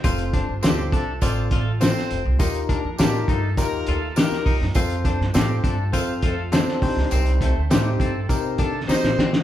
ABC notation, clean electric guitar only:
X:1
M:4/4
L:1/8
Q:1/4=102
K:Fmix
V:1 name="Clean electric guitar"
F D C D F F C2 | E D D E z F G E | F D C D F F D2 | C A, A, C z D E C |]